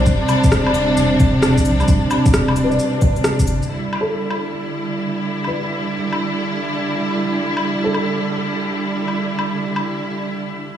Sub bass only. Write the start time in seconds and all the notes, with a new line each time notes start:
0.07 E1
0.44 E1
0.75 D1
0.97 E1
1.65 B1
2.26 E1
2.56 D1
3.47 G1